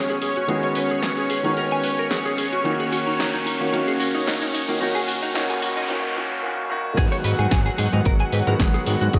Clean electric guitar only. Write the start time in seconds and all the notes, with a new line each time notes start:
0.10 G#4
0.22 G#4
0.37 F#4
0.50 G#4
0.64 C#5
0.77 B4
0.91 G#4
1.03 G#4
1.18 G#4
1.31 G#4
1.45 D#4
1.57 A#4
1.72 G#5
1.84 B4
1.99 A#4
2.11 G#4
2.26 G#4
2.38 G#4
2.53 F#4
2.65 D#4
2.80 G#4
2.92 F#4
3.07 D#4
3.19 D#4
3.34 D#4
3.46 D#4
3.61 A#3
3.73 D#4
3.87 G#4
4.00 F#4
4.15 D#4
4.27 D#4
4.41 D#4
4.54 D#4
4.69 A#3
4.81 D#4
4.95 G#4
5.08 F#4
5.22 D#4
5.35 D#4
5.50 G#4
5.62 F#4
5.77 D#4
6.97 G#4
7.12 C#5
7.25 B4
7.39 G#4
7.51 G#4
7.66 G#4
7.78 G#4
7.93 D#4
8.06 A#4
8.20 G#5
8.33 B4
8.47 A#4
8.60 G#4
8.74 G#4
8.87 G#4
9.01 F#4
9.14 G#4